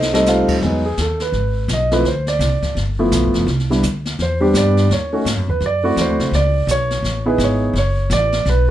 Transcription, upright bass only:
Already playing: C2
0.48 muted upright bass stroke
0.62 E2
0.98 D#2
1.32 G#1
1.68 B1
2.04 D2
2.39 C2
2.63 muted upright bass stroke
2.75 G1
3.12 B1
3.23 G1
3.35 F1
3.46 C2
3.83 D2
4.19 E2
4.54 G2
4.89 D#2
5.25 G#2
5.36 F#2
5.48 D#2
5.61 F#2
5.96 E2
6.08 D2
6.20 C2
6.32 C#2
6.67 B1
7.02 A1
7.38 G#1
7.73 F#1
8.10 A1
8.46 B1

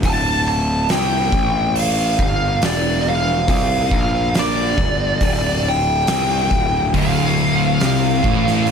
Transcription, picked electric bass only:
0.03 D1
0.90 C2
1.33 A1
2.19 G1
2.62 E1
3.48 C2
3.92 A#1
4.78 G1
5.21 D1
6.08 C2
6.51 D1
6.95 D1
7.81 C2
8.25 A1

